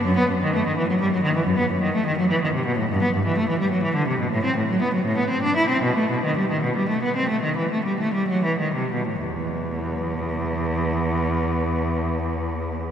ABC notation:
X:1
M:12/8
L:1/16
Q:3/8=76
K:Bphr
V:1 name="Cello" clef=bass
F,, B, F,, ^D, A, D, E, F, G, F, D, E, F,, B, F,, D, A, D, F, E, D, C, B,, A,, | G,, B, G,, E, A, E, G, F, E, D, C, B,, A,, C A,, F, B, F, A,, B, C D E C | B,, A, B,, ^D, G, D, B,, G, A, B, C A, D, E, A, G, A, G, F, E, D, C, B,, A,, | E,,24 |]